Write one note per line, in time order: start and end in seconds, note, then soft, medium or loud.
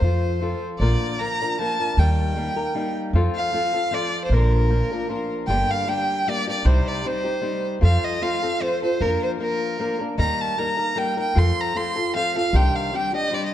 0.00 0.53 F2 medium
0.00 0.40 F3 soft
0.00 0.40 C4 soft
0.00 0.41 F4 medium
0.00 0.41 A4 soft
0.00 0.63 C5 medium
0.41 0.80 F3 medium
0.41 0.81 C4 medium
0.41 0.81 F4 medium
0.41 0.81 A4 medium
0.79 0.94 A#1 medium
0.79 1.20 A#2 medium
0.79 1.20 D3 medium
0.79 1.18 F3 soft
0.79 1.19 A#3 medium
0.79 1.19 D4 medium
0.79 1.20 A#4 medium
0.79 1.21 D5 medium
1.19 1.40 F3 soft
1.19 1.41 A#3 soft
1.19 1.40 D4 soft
1.19 1.40 A#4 soft
1.19 1.52 A#5 loud
1.41 1.58 F3 soft
1.41 1.59 A#3 soft
1.41 1.59 D4 soft
1.41 1.59 A#4 soft
1.52 1.60 A#5 medium
1.59 1.80 F3 medium
1.59 1.80 A#3 medium
1.59 1.79 D4 soft
1.59 1.79 A#4 medium
1.59 2.01 A5 loud
1.80 1.98 F3 soft
1.80 1.98 A#3 soft
1.80 1.98 D4 soft
1.80 1.98 A#4 soft
1.97 2.48 D#2 medium
1.97 2.37 D#3 medium
1.97 2.35 G3 medium
1.97 2.35 A#3 medium
1.97 2.36 D#4 medium
1.97 2.36 A#4 medium
1.97 2.97 G5 medium
2.36 2.57 G3 soft
2.36 2.56 A#3 medium
2.36 2.56 D#4 medium
2.36 2.55 A#4 medium
2.56 2.74 A#3 soft
2.56 2.74 D#4 soft
2.56 2.75 A#4 soft
2.75 3.14 G3 medium
2.75 3.14 A#3 medium
2.75 3.14 D#4 medium
2.75 3.14 A#4 medium
3.13 3.27 F2 medium
3.13 3.52 F3 medium
3.13 3.52 C4 medium
3.13 3.53 F4 medium
3.13 3.54 A4 medium
3.36 3.96 F5 loud
3.53 3.74 F3 medium
3.53 3.74 C4 soft
3.53 3.73 F4 medium
3.53 3.72 A4 medium
3.73 3.91 C4 soft
3.73 3.91 F4 soft
3.73 3.91 A4 soft
3.91 4.30 F3 medium
3.91 4.31 C4 medium
3.91 4.31 F4 medium
3.91 4.31 A4 medium
3.91 4.23 D5 loud
4.25 4.35 C5 medium
4.29 4.81 A#1 medium
4.29 4.70 A#2 medium
4.29 4.70 D3 medium
4.29 4.69 F3 medium
4.29 4.70 A#3 medium
4.29 4.70 D4 medium
4.29 4.70 A#4 medium
4.34 5.32 A#4 medium
4.70 4.91 F3 soft
4.70 4.91 A#3 soft
4.70 4.90 D4 soft
4.70 4.90 A#4 medium
4.91 5.08 F3 soft
4.91 5.08 A#3 soft
4.91 5.08 D4 soft
4.91 5.09 A#4 soft
5.09 5.48 F3 soft
5.09 5.49 A#3 medium
5.09 5.48 D4 soft
5.09 5.49 A#4 medium
5.48 5.62 G1 medium
5.48 5.88 G2 medium
5.48 5.88 D3 medium
5.48 5.85 G3 medium
5.48 5.86 A#3 medium
5.48 5.86 D4 medium
5.48 5.87 G4 medium
5.48 5.72 G5 medium
5.71 5.90 F5 medium
5.86 6.25 G3 medium
5.86 6.27 A#3 medium
5.86 6.27 D4 medium
5.86 6.27 G4 medium
5.86 6.31 G5 medium
6.27 6.48 G3 soft
6.27 6.47 A#3 soft
6.27 6.47 D4 medium
6.27 6.46 G4 medium
6.27 6.49 D5 loud
6.47 6.64 G3 soft
6.47 6.65 A#3 soft
6.47 6.65 D4 soft
6.47 6.64 G4 soft
6.47 6.68 D5 medium
6.65 6.79 C2 medium
6.65 7.04 C3 medium
6.65 7.03 G3 medium
6.65 7.04 C4 medium
6.65 7.04 D#4 medium
6.65 7.04 G4 medium
6.65 6.90 C5 medium
6.88 7.09 D5 medium
7.04 7.26 G3 medium
7.04 7.24 C4 medium
7.04 7.24 D#4 medium
7.04 7.23 G4 medium
7.04 7.66 C5 medium
7.24 7.41 C4 soft
7.24 7.42 D#4 soft
7.24 7.42 G4 soft
7.41 7.81 G3 medium
7.41 7.80 C4 soft
7.41 7.81 D#4 medium
7.41 7.82 G4 medium
7.81 7.96 F2 medium
7.81 8.20 F3 medium
7.81 8.21 C4 medium
7.81 8.21 F4 medium
7.81 8.22 A4 medium
7.81 8.06 F5 medium
8.05 8.24 D#5 medium
8.21 8.43 F3 medium
8.21 8.43 C4 medium
8.21 8.42 F4 medium
8.21 8.41 A4 medium
8.21 8.64 F5 medium
8.43 8.60 C4 soft
8.43 8.60 F4 soft
8.43 8.60 A4 soft
8.60 8.82 F3 soft
8.60 8.82 C4 soft
8.60 8.82 F4 medium
8.60 8.81 A4 medium
8.60 8.82 C5 loud
8.82 9.01 C4 soft
8.82 9.00 F4 soft
8.82 9.00 A4 soft
8.82 9.03 C5 medium
9.00 9.14 F2 medium
9.00 9.38 F3 medium
9.00 9.39 A#3 medium
9.00 9.39 D4 medium
9.00 9.22 A#4 medium
9.00 9.39 A#4 medium
9.23 9.31 C5 medium
9.39 9.78 F3 medium
9.39 9.78 A#3 medium
9.39 9.79 D4 medium
9.39 9.79 A#4 medium
9.39 9.97 A#4 medium
9.79 10.00 F3 medium
9.79 9.99 A#3 medium
9.79 9.99 D4 medium
9.79 9.98 A#4 medium
9.99 10.17 A#3 soft
9.99 10.18 D4 soft
9.99 10.18 A#4 soft
10.18 10.32 D#2 medium
10.18 10.58 D#3 medium
10.18 10.56 G3 medium
10.18 10.57 A#3 medium
10.18 10.58 D#4 medium
10.18 10.58 A#4 medium
10.18 10.43 A#5 loud
10.41 10.60 A5 medium
10.57 10.79 G3 soft
10.57 10.78 A#3 medium
10.57 10.77 D#4 medium
10.57 10.76 A#4 medium
10.57 11.00 A#5 medium
10.77 10.95 A#3 soft
10.77 10.95 D#4 soft
10.77 10.96 A#4 soft
10.96 11.18 G3 soft
10.96 11.17 A#3 medium
10.96 11.17 D#4 soft
10.96 11.16 A#4 medium
10.96 11.19 G5 loud
11.17 11.35 A#3 soft
11.17 11.35 D#4 soft
11.17 11.36 A#4 soft
11.17 11.39 G5 medium
11.35 11.50 F2 medium
11.35 11.74 F3 medium
11.35 11.74 C4 medium
11.35 11.75 F4 medium
11.35 11.75 A4 medium
11.35 11.62 C6 loud
11.61 11.78 A#5 medium
11.75 11.97 F3 medium
11.75 11.95 C4 medium
11.75 11.96 F4 medium
11.75 11.94 A4 medium
11.75 12.15 C6 medium
11.95 12.14 C4 soft
11.95 12.15 F4 soft
11.95 12.14 A4 soft
12.14 12.36 F3 medium
12.14 12.35 C4 medium
12.14 12.35 F4 medium
12.14 12.34 A4 medium
12.14 12.35 F5 loud
12.36 12.53 C4 soft
12.36 12.54 F4 soft
12.36 12.54 A4 soft
12.36 12.58 F5 loud
12.53 12.67 C2 medium
12.53 12.93 C3 medium
12.53 12.93 D#3 medium
12.53 12.92 G3 medium
12.53 12.92 C4 medium
12.53 12.93 D4 medium
12.53 12.93 G4 medium
12.53 12.77 G5 loud
12.76 12.97 F5 medium
12.93 13.13 G3 medium
12.93 13.13 C4 medium
12.93 13.12 D4 medium
12.93 13.11 G4 medium
12.93 13.15 G5 loud
13.13 13.30 G3 soft
13.13 13.30 C4 soft
13.13 13.31 D4 soft
13.13 13.32 G4 soft
13.13 13.36 D#5 loud
13.31 13.54 G3 medium
13.31 13.54 C4 medium
13.31 13.54 D4 medium
13.31 13.54 G4 medium
13.31 13.45 D5 loud
13.46 13.54 D#5 medium